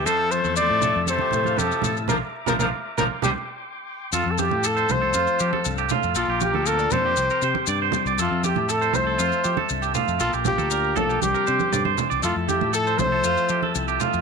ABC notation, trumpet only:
X:1
M:4/4
L:1/16
Q:1/4=118
K:F
V:1 name="Trumpet"
A2 c2 d4 c4 A3 z | B z2 B B z2 B z G z6 | F3/2 A/2 G2 A2 c6 z4 | F2 G2 A2 c6 z4 |
F2 G2 A2 c6 z4 | F2 G4 A2 G6 z2 | F2 G2 A2 c6 z4 |]